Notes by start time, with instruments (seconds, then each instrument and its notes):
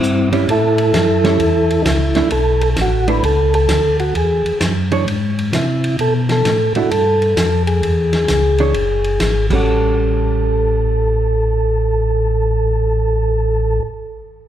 Already playing: tonewheel organ C4 E4
0.02 tonewheel organ G2, hi-hat pedal
0.32 hollow-body jazz guitar G3 C#4 E4, ride
0.48 tonewheel organ A2 E4 A4, ride
0.78 ride
0.94 tonewheel organ F#2, snare, hi-hat pedal, ride
1.24 hollow-body jazz guitar G3 C#4 E4, snare, ride
1.39 tonewheel organ E2, ride
1.70 ride
1.82 tonewheel organ C#2 D#4, snare, hi-hat pedal, ride
1.87 tonewheel organ E4
2.15 tonewheel organ C#2, hollow-body jazz guitar A3 D4 E4, snare, ride
2.30 tonewheel organ B1 A4, ride
2.61 tonewheel organ A4, ride
2.76 tonewheel organ A1, snare, hi-hat pedal, ride
2.81 tonewheel organ F#4
3.08 hollow-body jazz guitar A3 D4 E4, tonewheel organ B4, ride
3.23 tonewheel organ C#2 A4, ride
3.54 tonewheel organ A4, ride
3.69 tonewheel organ D2, snare, hi-hat pedal, ride
3.99 tonewheel organ F#4, ride
4.15 tonewheel organ E2 G#4, ride
4.45 tonewheel organ E2, ride
4.61 tonewheel organ F#2, snare, hi-hat pedal, ride
4.91 hollow-body jazz guitar E3 D4 G#4 C#5, ride
5.07 tonewheel organ G#2, ride
5.38 ride
5.52 tonewheel organ C3 E4, snare, hi-hat pedal, ride
5.84 ride
5.99 tonewheel organ B2 A4, ride
6.29 tonewheel organ A4, snare, ride
6.45 tonewheel organ A2, snare, hi-hat pedal, ride
6.75 tonewheel organ A2 F#4, hollow-body jazz guitar A3 D4 E4, ride
6.91 tonewheel organ G2 A4, ride
7.22 ride
7.37 tonewheel organ F2, snare, hi-hat pedal, ride
7.67 tonewheel organ G#4, ride
7.83 tonewheel organ E2, ride
8.13 snare, ride
8.28 tonewheel organ C#2, snare, hi-hat pedal, ride
8.58 hollow-body jazz guitar E3 D4 G#4 C#5, ride
8.74 tonewheel organ F#1, ride
9.04 ride
9.20 tonewheel organ G#1, snare, hi-hat pedal, ride
9.50 tonewheel organ A1 A4, hollow-body jazz guitar G3 C#4, kick, crash
9.55 hollow-body jazz guitar F#4